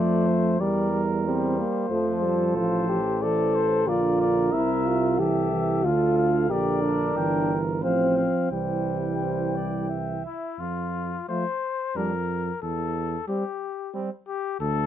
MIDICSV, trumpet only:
0, 0, Header, 1, 2, 480
1, 0, Start_track
1, 0, Key_signature, -1, "major"
1, 0, Tempo, 656455
1, 440, Time_signature, 3, 2, 24, 8
1, 5720, Tempo, 692042
1, 8120, Tempo, 663717
1, 10710, End_track
2, 0, Start_track
2, 0, Title_t, "Trumpet"
2, 0, Program_c, 0, 56
2, 0, Note_on_c, 0, 72, 39
2, 444, Note_on_c, 0, 74, 42
2, 455, Note_off_c, 0, 72, 0
2, 753, Note_off_c, 0, 74, 0
2, 924, Note_on_c, 0, 72, 40
2, 1848, Note_off_c, 0, 72, 0
2, 1878, Note_on_c, 0, 72, 48
2, 2356, Note_on_c, 0, 74, 47
2, 2367, Note_off_c, 0, 72, 0
2, 2598, Note_on_c, 0, 72, 53
2, 2609, Note_off_c, 0, 74, 0
2, 2842, Note_on_c, 0, 74, 47
2, 2853, Note_off_c, 0, 72, 0
2, 3075, Note_off_c, 0, 74, 0
2, 3079, Note_on_c, 0, 74, 48
2, 3310, Note_on_c, 0, 76, 53
2, 3321, Note_off_c, 0, 74, 0
2, 3793, Note_off_c, 0, 76, 0
2, 3805, Note_on_c, 0, 76, 43
2, 4284, Note_on_c, 0, 77, 49
2, 4295, Note_off_c, 0, 76, 0
2, 4514, Note_off_c, 0, 77, 0
2, 4518, Note_on_c, 0, 77, 49
2, 4762, Note_on_c, 0, 74, 49
2, 4773, Note_off_c, 0, 77, 0
2, 5239, Note_on_c, 0, 79, 42
2, 5250, Note_off_c, 0, 74, 0
2, 5552, Note_off_c, 0, 79, 0
2, 5728, Note_on_c, 0, 77, 42
2, 5945, Note_off_c, 0, 77, 0
2, 5960, Note_on_c, 0, 77, 39
2, 6196, Note_off_c, 0, 77, 0
2, 6201, Note_on_c, 0, 79, 43
2, 7379, Note_off_c, 0, 79, 0
2, 7406, Note_on_c, 0, 64, 44
2, 7642, Note_on_c, 0, 65, 50
2, 7652, Note_off_c, 0, 64, 0
2, 8122, Note_off_c, 0, 65, 0
2, 8125, Note_on_c, 0, 72, 57
2, 8614, Note_on_c, 0, 70, 49
2, 8625, Note_off_c, 0, 72, 0
2, 9084, Note_off_c, 0, 70, 0
2, 9089, Note_on_c, 0, 69, 59
2, 9556, Note_off_c, 0, 69, 0
2, 9565, Note_on_c, 0, 67, 51
2, 10033, Note_off_c, 0, 67, 0
2, 10285, Note_on_c, 0, 67, 54
2, 10506, Note_off_c, 0, 67, 0
2, 10523, Note_on_c, 0, 69, 68
2, 10710, Note_off_c, 0, 69, 0
2, 10710, End_track
0, 0, End_of_file